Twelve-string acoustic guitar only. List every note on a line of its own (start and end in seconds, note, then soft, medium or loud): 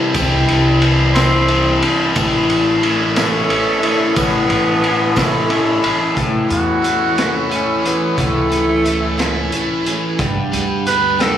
0.00 0.15 E3 medium
0.00 0.15 G3 soft
0.00 0.16 C4 soft
0.00 0.15 E4 medium
0.15 0.82 C3 medium
0.15 0.82 E3 medium
0.15 0.82 G3 medium
0.15 0.82 C4 loud
0.15 0.84 E4 medium
0.82 1.15 E3 medium
0.82 1.15 G3 medium
0.82 1.15 C4 medium
0.82 1.14 E4 medium
1.15 1.83 C3 medium
1.15 2.15 E3 medium
1.15 1.82 G3 medium
1.15 1.82 C4 medium
1.15 1.82 E4 medium
1.82 2.16 G3 soft
1.82 2.16 C4 soft
1.82 2.15 E4 medium
2.15 2.82 A2 loud
2.15 2.83 E3 loud
2.15 2.84 A3 medium
2.15 2.85 C#4 loud
2.15 2.85 E4 loud
2.83 3.16 E3 medium
2.83 3.16 A3 medium
2.83 3.15 C#4 medium
2.83 3.15 E4 medium
3.16 3.84 A2 medium
3.16 4.16 E3 medium
3.16 3.84 A3 medium
3.16 3.84 C#4 medium
3.16 3.82 E4 medium
3.82 4.15 A3 soft
3.82 4.16 C#4 medium
3.82 4.16 E4 medium
4.16 4.83 A2 medium
4.16 4.81 E3 medium
4.16 4.82 A3 medium
4.16 4.83 C#4 medium
4.16 4.84 E4 medium
4.83 5.15 E3 medium
4.83 5.16 A3 medium
4.83 5.15 C#4 medium
4.83 5.15 E4 medium
5.16 5.84 A2 medium
5.16 5.83 E3 medium
5.16 5.84 A3 medium
5.16 5.82 C#4 medium
5.16 5.81 E4 medium
5.82 6.16 A3 soft
5.82 6.17 C#4 soft
5.82 6.16 E4 medium
6.16 6.84 A2 medium
6.16 6.82 E3 medium
6.16 6.83 A3 medium
6.16 6.84 C#4 medium
6.16 6.85 E4 medium
6.83 7.17 E3 medium
6.83 7.17 A3 medium
6.83 7.17 C#4 medium
6.83 7.16 E4 medium
7.17 7.85 A2 medium
7.17 7.85 E3 medium
7.17 7.85 A3 medium
7.17 7.84 C#4 medium
7.17 7.82 E4 medium
7.84 8.17 A3 soft
7.84 8.18 C#4 soft
7.84 8.18 E4 medium
8.17 8.85 A2 medium
8.17 8.83 E3 medium
8.17 8.84 A3 medium
8.17 8.85 C#4 medium
8.17 8.85 E4 medium
8.84 9.18 E3 medium
8.84 9.17 A3 medium
8.84 9.17 C#4 medium
8.84 9.16 E4 medium
9.18 9.86 A2 medium
9.18 9.86 E3 medium
9.18 9.86 A3 medium
9.18 9.85 C#4 medium
9.18 9.83 E4 medium
9.84 10.20 A3 medium
9.84 10.20 C#4 medium
9.84 10.18 E4 medium
10.18 10.86 G2 medium
10.18 10.86 D3 medium
10.18 10.84 G3 medium
10.18 10.86 B3 medium
10.18 10.87 D4 medium
10.18 10.87 G4 medium
10.86 11.19 G3 medium
10.86 11.18 B3 medium
10.86 11.18 D4 medium
10.86 11.17 G4 medium
11.19 11.38 G2 medium
11.19 11.38 D3 medium
11.19 11.38 G3 medium
11.19 11.38 B3 medium
11.19 11.38 D4 medium
11.19 11.38 G4 medium